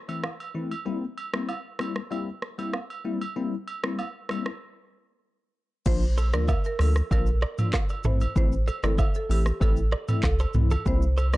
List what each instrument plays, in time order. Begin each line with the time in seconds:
0.08 tine electric piano E3 A3 C4 E4, high agogo
0.23 cross-stick, low woodblock
0.40 high agogo
0.54 tine electric piano E3 A3 C4 E4
0.71 high agogo
0.85 tine electric piano G3 A#3 C4 E4
1.18 high agogo
1.33 tine electric piano G3 A#3 C4 E4, cross-stick
1.49 high agogo, low woodblock
1.79 tine electric piano G3 A#3 C4 E4, cross-stick, high agogo
1.96 cross-stick
2.11 tine electric piano G3 A#3 C4 E4, high agogo
2.42 cross-stick
2.58 tine electric piano G3 A#3 C4 E4, high agogo
2.73 cross-stick, low woodblock
2.90 high agogo
3.04 tine electric piano G3 A#3 C4 E4
3.21 high agogo
3.36 tine electric piano G3 A#3 C4 E4
3.68 high agogo
3.83 tine electric piano G3 A#3 C4 E4, cross-stick
3.99 high agogo, low woodblock
4.29 tine electric piano G3 A#3 C4 E4, cross-stick, high agogo
4.46 cross-stick
5.86 analog synth bass A#1, tine electric piano F3 A#3 D4 F4, marimba C5, kick, crash, shaker
6.02 shaker
6.17 clean electric guitar A4 C5, high agogo, shaker
6.33 analog synth bass D2, tine electric piano F3 A#3 D4 F4, clean electric guitar A#4 D5, marimba A#4, cross-stick, shaker
6.48 clean electric guitar A#4 E5, kick, high agogo, low woodblock, shaker
6.64 marimba A#4, shaker
6.79 analog synth bass D2, tine electric piano F3 A#3 D4 F4, marimba A4, cross-stick, open hi-hat, high agogo, shaker
6.96 cross-stick, shaker
7.11 analog synth bass A#1, tine electric piano F3 A#3 D4 F4, marimba A#4, kick, high agogo, shaker
7.26 shaker
7.42 clean electric guitar A#4 D5, cross-stick
7.58 tine electric piano F3 A#3 D4 F4, mid tom, high agogo, shaker
7.73 clean electric guitar F4 A#4, kick, cross-stick, clap, low woodblock, shaker
7.89 high agogo, shaker
8.03 analog synth bass A1, tine electric piano E3 A3 C4 E4, clean electric guitar E4 A4, marimba C5, mid tom, shaker
8.21 high agogo, shaker
8.35 analog synth bass A1, tine electric piano E3 A3 C4 E4, marimba C5, kick, shaker
8.52 shaker
8.68 clean electric guitar A4 C5, high agogo, shaker
8.83 analog synth bass G1, tine electric piano E3 A3 C4 E4, marimba A4, clean electric guitar A#4 D5, cross-stick, shaker
8.98 clean electric guitar C5 E5, kick, high agogo, low woodblock, shaker
9.14 marimba A4, shaker
9.29 analog synth bass A1, tine electric piano E3 A3 C4 E4, marimba G4, open hi-hat, high agogo, shaker
9.46 cross-stick, shaker
9.60 analog synth bass A1, tine electric piano E3 A3 C4 E4, marimba A4, kick, high agogo, shaker
9.76 shaker
9.92 clean electric guitar A#4 D5, cross-stick
10.08 tine electric piano E3 A3 C4 E4, mid tom, high agogo, shaker
10.23 analog synth bass C2, marimba A4, kick, cross-stick, clap, low woodblock, shaker
10.39 clean electric guitar A4 C5, high agogo, shaker
10.54 analog synth bass C2, tine electric piano E3 A3 C4 E4, mid tom, shaker
10.71 clean electric guitar F4 A4, high agogo, shaker
10.85 analog synth bass C2, tine electric piano G3 A#3 C4 E4, marimba C5, kick, shaker
11.02 shaker
11.17 clean electric guitar A4 C5, high agogo, shaker
11.33 analog synth bass E2, tine electric piano G3 A#3 C4 E4, clean electric guitar D5, cross-stick, shaker